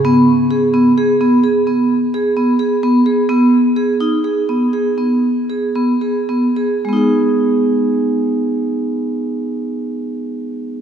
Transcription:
\new Staff \with { instrumentName = "Vibraphone" } { \time 7/4 \key gis \minor \tempo 4 = 120 b4 gis'8 b8 gis'8 b8 gis'8 b4 gis'8 b8 gis'8 b8 gis'8 | b4 gis'8 dis'8 gis'8 b8 gis'8 b4 gis'8 b8 gis'8 b8 gis'8 | <gis b dis' gis'>1.~ <gis b dis' gis'>4 | }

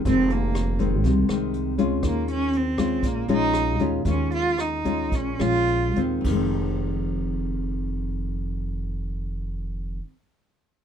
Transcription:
<<
  \new Staff \with { instrumentName = "Cello" } { \time 4/4 \key f \minor \tempo 4 = 110 c'8 bes4 r2 r8 | bes8 des'8 c'4 bes8 ees'4 r8 | des'8 f'8 ees'4 des'8 f'4 r8 | r1 |
r1 | }
  \new Staff \with { instrumentName = "Nylon-string guitar" } { \clef bass \time 4/4 \key f \minor << { <ees aes c'>4. <ees aes c'>4 <ees aes c'>4 <aes des' f'>8~ | <aes des' f'>4. <aes des' f'>4 <aes des' f'>4 <aes des' f'>8 | <aes des' f'>4. <aes des' f'>4 <aes des' f'>4 <ees aes c'>8~ | <ees aes c'>4 r2. |
r1 | } \\ { f,2 c2 | ees2 bes,2 | ees2 bes,2 | <f, ees aes c'>1~ |
<f, ees aes c'>1 | } >> }
  \new Staff \with { instrumentName = "Upright bass" } { \clef bass \time 4/4 \key f \minor f,,2 c,8 r4 des,8 | ees,2 bes,,8 bes,,4 ees,8 | ees,2 bes,,8 bes,,4 ees,8 | f,,1~ |
f,,1 | }
  \new DrumStaff \with { instrumentName = "Drums" } \drummode { \time 4/4 <hh bd>8 hh8 <hh ss>8 <hh bd>8 <hh bd>8 <hh ss>8 hh8 <hh bd>8 | <hh bd ss>8 hh8 hh8 <hh bd ss>8 <hh bd>8 hh8 <hh ss>8 <hh bd>8 | <hh bd>8 hh8 <hh ss>8 <hh bd>8 <hh bd>8 <hh ss>8 hh8 <hh bd>8 | <cymc bd>4 r4 r4 r4 |
r4 r4 r4 r4 | }
>>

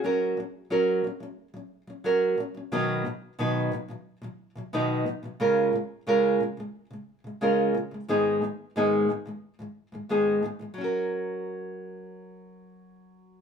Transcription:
\new Staff \with { instrumentName = "Nylon-string guitar" } { \clef bass \time 4/4 \key fis \major \tempo 4 = 89 <fis cis' fis' ais'>8 <fis cis'>8 <fis cis' fis' ais'>8 <fis cis'>16 <fis cis'>8 <fis cis'>8 <fis cis'>16 <fis cis' fis' ais'>8 <fis cis'>16 <fis cis'>16 | <b, dis fis b dis' b'>8 <b, dis fis>8 <b, dis fis b dis' b'>8 <b, dis fis>16 <b, dis fis>8 <b, dis fis>8 <b, dis fis>16 <b, dis fis b dis' b'>8 <b, dis fis>16 <b, dis fis>16 | <cis gis cis' eis' ais'>8 <cis gis>8 <cis gis cis' eis' ais'>8 <cis gis>16 <cis gis>8 <cis gis>8 <cis gis>16 <cis gis cis' eis' ais'>8 <cis gis>16 <cis gis>16 | <gis, dis gis b dis' gis'>8 <gis, dis gis>8 <gis, dis gis b dis' gis'>8 <gis, dis gis>16 <gis, dis gis>8 <gis, dis gis>8 <gis, dis gis>16 <gis, dis gis b dis' gis'>8 <gis, dis gis>16 <gis, dis gis>16 |
<fis cis' fis' ais'>1 | }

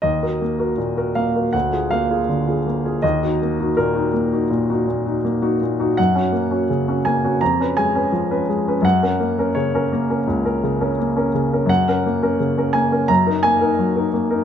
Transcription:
\new Staff \with { instrumentName = "Grand piano" } { \time 4/4 \key ees \minor \tempo 4 = 84 << { ees''4. f''8 ges''8 f''4. | ees''4 bes'2~ bes'8 r8 | ges''4. aes''8 bes''8 aes''4. | ges''4 des''2~ des''8 r8 |
ges''4. aes''8 bes''8 aes''4. | } \\ { ees,16 <ges' bes'>16 bes16 <ges' bes'>16 bes,16 <ges' bes'>16 bes16 <ges' bes'>16 d,16 <f' aes'>16 bes16 <f' aes'>16 d16 <f' aes'>16 bes16 <f' aes'>16 | ees,16 <ees' ges'>16 bes16 <ees' ges'>16 bes,16 <ees' ges'>16 bes16 <ees' ges'>16 bes,16 <ees' ges'>16 bes,16 <ees' ges'>16 bes16 <ees' ges'>16 bes,16 <ees' ges'>16 | ges,16 <des' ges'>16 bes16 <des' ges'>16 des16 <des' ges'>16 bes16 <des' ges'>16 f,16 <des' ces''>16 aes16 <des' ces''>16 f16 <des' ces''>16 aes16 <des' ces''>16 | ges,16 <des' bes'>16 bes16 <des' bes'>16 des16 <des' bes'>16 bes16 <des' bes'>16 des,16 <des' bes'>16 des16 <des' bes'>16 bes16 <des' bes'>16 des16 <des' bes'>16 |
ges,16 <des' bes'>16 bes16 <des' bes'>16 des16 <des' bes'>16 bes16 <des' bes'>16 ges,16 <ees' bes'>16 bes16 <ees' bes'>16 ges16 <ees' bes'>16 bes16 <ees' bes'>16 | } >> }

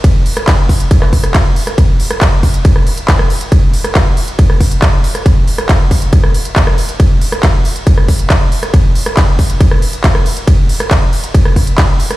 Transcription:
\new DrumStaff \with { instrumentName = "Drums" } \drummode { \time 4/4 \tempo 4 = 138 <hh bd cymr>8 hho16 <hh ss>16 <hc hh bd cymr>8 <hho bd>16 hh16 <hh bd cymr>16 <hc ss>16 <hho bd>16 <hh ss>16 <hc hh bd cymr>8 hho16 <hh ss>16 | <hh bd cymr>8 hho16 <hh ss>16 <hc hh bd cymr>8 <hho bd>16 hh16 <hh bd cymr>16 ss16 hho16 hh16 <hc hh bd cymr>16 ss16 hho16 hh16 | <hh bd cymr>8 hho16 <hh ss>16 <hc hh bd cymr>8 hho16 hh16 <hh bd cymr>16 ss16 <hho bd>16 hh16 <hc hh bd cymr>8 hho16 <hh ss>16 | <hh bd cymr>8 hho16 <hh ss>16 <hc hh bd cymr>8 <hho bd>16 hh16 <hh bd cymr>16 ss16 hho16 hh16 <hc hh bd cymr>16 ss16 hho16 hh16 |
<hh bd cymr>8 hho16 <hh ss>16 <hc hh bd cymr>8 hho16 hh16 <hh bd cymr>16 ss16 <hho bd>16 hh16 <hc hh bd cymr>8 hho16 <hh ss>16 | <hh bd cymr>8 hho16 <hh ss>16 <hc hh bd cymr>8 <hho bd>16 hh16 <hh bd cymr>16 ss16 hho16 hh16 <hc hh bd cymr>16 ss16 hho16 hh16 | <hh bd cymr>8 hho16 <hh ss>16 <hc hh bd cymr>8 hho16 hh16 <hh bd cymr>16 ss16 <hho bd>16 hh16 <hc hh bd cymr>8 hho16 <hh ss>16 | }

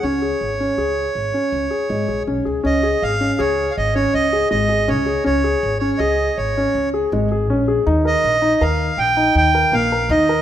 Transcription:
<<
  \new Staff \with { instrumentName = "Accordion" } { \time 7/4 \key des \major \tempo 4 = 161 des''1. r4 | ees''4 f''4 des''8.~ des''32 f''32 ees''8 des''8 ees''4 ees''4 des''4 | des''4. des''8 ees''4 des''4. r2 r8 | r8 ees''4. f''4 g''4 g''4 f''4 ees''4 | }
  \new Staff \with { instrumentName = "Grand piano" } { \time 7/4 \key des \major des'8 aes'4 des'8 aes'4 r8 des'4 aes'8 aes8 aes'8 des'8 aes'8 | des'8 aes'4 des'8 aes'4 r8 des'4 aes'8 aes8 aes'8 des'8 aes'8 | des'8 aes'4 des'8 aes'4 r8 des'4 aes'8 aes8 aes'8 des'8 aes'8 | ees'8 bes'4 ees'8 bes'4 r8 ees'4 bes'8 bes8 bes'8 ees'8 bes'8 | }
  \new Staff \with { instrumentName = "Upright bass" } { \clef bass \time 7/4 \key des \major des,4 aes,,4 des,4 aes,,8 r8 des,8 r8 aes,,8 bes,,8 ces,8 des,8 | des,4 aes,,4 des,4 aes,,4 des,4 aes,,4 des,4 | des,4 aes,,4 des,4 aes,,4 des,4 aes,,4 bes,,4 | ees,4 bes,,4 ees,4 bes,,4 ees,4 bes,,4 ees,4 | }
>>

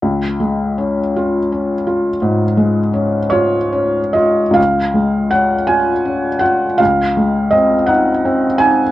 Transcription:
\new Staff \with { instrumentName = "Felt piano" } { \time 12/8 \key des \major \tempo 4. = 54 << { r1 r8 des''4 ees''8 | f''4 ges''8 aes''4 ges''8 f''4 ees''8 ges''4 aes''8 | } \\ { des,8 aes8 des'8 f'8 des'8 f'8 aes,8 aes8 des'8 f'8 des'8 f'8 | des,8 aes8 des'8 f'8 des'8 f'8 des,8 aes8 c'8 ees'8 c'8 ees'8 | } >> }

